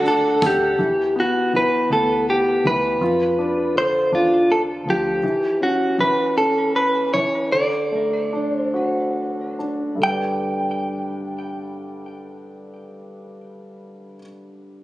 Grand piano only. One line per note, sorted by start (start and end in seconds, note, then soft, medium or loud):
0.00 0.75 D3 medium
0.00 0.38 A3 medium
0.00 0.05 D4 medium
0.00 0.75 F#5 medium
0.05 0.77 D4 medium
0.42 0.78 A4 medium
0.79 1.52 E3 soft
1.16 1.89 B3 soft
1.53 2.64 E3 soft
1.91 2.98 B3 soft
2.65 3.00 E3 soft
3.01 5.19 F4 soft
3.38 4.11 D4 soft
3.75 5.19 D3 soft
4.13 5.20 D4 soft
4.87 5.23 F3 soft
5.23 5.97 E3 soft
5.61 6.35 C#4 soft
5.98 7.12 E3 soft
6.37 7.48 C#4 soft
7.14 7.51 E3 soft
7.52 9.97 D3 soft
7.92 9.55 A3 soft
8.33 9.58 D4 soft
8.74 9.99 F#4 soft
9.59 10.02 D4 soft
9.95 14.15 G2 soft
9.95 14.17 D3 soft
10.02 14.19 G3 soft
10.02 14.20 D4 soft
10.08 14.21 B4 soft
10.08 14.23 D5 soft